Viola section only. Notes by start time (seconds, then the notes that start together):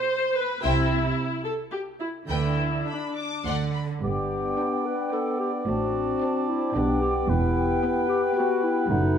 Already playing: C5
0.36 B4
0.63 E4
1.43 A4
1.71 G4
1.99 E4
2.29 E4
2.88 D4
4.59 D4
5.13 D4
6.22 D4
6.75 D4
7.82 B3
8.37 B3